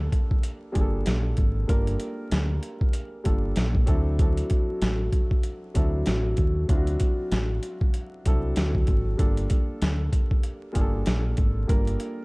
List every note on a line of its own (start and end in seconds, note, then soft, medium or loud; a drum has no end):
0.00 0.72 G3 medium
0.00 0.73 A#3 medium
0.00 0.73 D4 medium
0.00 0.74 F4 medium
0.00 0.81 A4 medium
0.12 kick medium
0.12 closed hi-hat medium
0.31 kick medium
0.43 closed hi-hat medium
0.72 1.02 G1 medium
0.72 1.38 G3 medium
0.72 1.38 A#3 medium
0.72 1.38 D4 medium
0.72 1.39 F4 medium
0.72 0.82 G#4 medium
0.72 kick medium
0.72 closed hi-hat medium
0.81 1.42 A4 medium
1.06 1.33 A#1 medium
1.06 snare loud
1.06 closed hi-hat loud
1.37 1.64 G#1 medium
1.37 kick loud
1.37 closed hi-hat medium
1.68 1.96 G1 loud
1.68 2.55 G3 medium
1.68 2.55 A#3 medium
1.68 2.55 D4 medium
1.68 2.55 F4 medium
1.68 2.56 A#4 loud
1.68 kick loud
1.68 closed hi-hat medium
1.87 closed hi-hat medium
2.00 closed hi-hat medium
2.31 2.58 D2 medium
2.31 snare loud
2.31 closed hi-hat loud
2.63 closed hi-hat medium
2.81 kick medium
2.93 closed hi-hat medium
3.24 3.52 G1 medium
3.24 3.87 G3 medium
3.24 3.87 A#3 medium
3.24 3.85 D4 medium
3.24 3.88 F4 medium
3.24 3.87 A4 medium
3.24 kick medium
3.24 closed hi-hat medium
3.56 3.83 A#1 medium
3.56 snare loud
3.56 closed hi-hat medium
3.75 kick loud
3.86 4.41 D2 loud
3.86 4.13 F#3 medium
3.86 4.13 C4 medium
3.86 4.13 D4 medium
3.86 4.14 E4 medium
3.86 4.14 A4 loud
3.86 kick loud
3.86 closed hi-hat medium
4.19 5.06 F#3 medium
4.19 5.06 C4 medium
4.19 5.06 D4 medium
4.19 5.07 E4 medium
4.19 5.07 A4 medium
4.19 kick loud
4.19 closed hi-hat medium
4.37 closed hi-hat medium
4.50 kick loud
4.50 closed hi-hat medium
4.82 5.08 A1 medium
4.82 snare loud
4.82 closed hi-hat loud
5.13 kick medium
5.13 closed hi-hat medium
5.31 kick medium
5.43 closed hi-hat medium
5.74 6.02 D2 medium
5.74 6.39 F#3 medium
5.74 6.39 C4 medium
5.74 6.39 D4 medium
5.74 6.40 E4 medium
5.74 6.40 A4 medium
5.74 kick medium
5.74 closed hi-hat medium
6.06 6.33 A1 medium
6.06 snare loud
6.06 closed hi-hat loud
6.37 6.64 D#2 medium
6.37 kick medium
6.37 closed hi-hat medium
6.68 6.96 D2 loud
6.68 7.55 F#3 medium
6.68 7.55 C4 medium
6.68 7.56 D4 medium
6.68 7.56 E4 medium
6.68 6.77 F4 medium
6.68 kick loud
6.68 closed hi-hat medium
6.77 7.59 F#4 medium
6.87 closed hi-hat medium
7.00 kick medium
7.00 closed hi-hat medium
7.32 7.58 A1 loud
7.32 snare loud
7.32 closed hi-hat medium
7.63 closed hi-hat medium
7.81 kick loud
7.94 closed hi-hat medium
8.25 8.52 C2 medium
8.25 8.89 F#3 medium
8.25 8.90 C4 medium
8.25 8.90 D4 medium
8.25 8.90 E4 medium
8.25 8.90 A4 loud
8.25 kick medium
8.25 closed hi-hat medium
8.56 8.83 D2 medium
8.56 snare loud
8.56 closed hi-hat loud
8.75 kick medium
8.87 9.14 G#1 medium
8.87 kick loud
8.87 closed hi-hat medium
9.17 9.46 G1 loud
9.17 10.05 G3 medium
9.17 10.05 A#3 medium
9.17 10.05 D4 medium
9.17 10.05 F4 medium
9.17 10.06 A4 medium
9.17 kick loud
9.17 closed hi-hat medium
9.37 closed hi-hat medium
9.50 kick medium
9.50 closed hi-hat medium
9.82 10.08 D2 loud
9.82 snare loud
9.82 closed hi-hat medium
10.13 kick medium
10.13 closed hi-hat medium
10.31 kick medium
10.43 closed hi-hat medium
10.72 11.02 G1 medium
10.72 11.38 G3 medium
10.72 11.38 A#3 medium
10.72 11.38 D4 medium
10.72 11.39 F4 medium
10.72 10.82 G#4 medium
10.72 kick medium
10.72 closed hi-hat medium
10.81 11.42 A4 loud
11.06 11.33 A#1 medium
11.06 snare loud
11.06 closed hi-hat medium
11.37 11.64 G#1 medium
11.37 kick loud
11.37 closed hi-hat medium
11.67 11.96 G1 loud
11.67 12.25 G3 medium
11.67 12.25 A#3 medium
11.67 12.25 D4 medium
11.67 12.25 F4 medium
11.67 12.25 A#4 loud
11.67 kick loud
11.67 closed hi-hat medium
11.87 closed hi-hat medium
12.00 closed hi-hat medium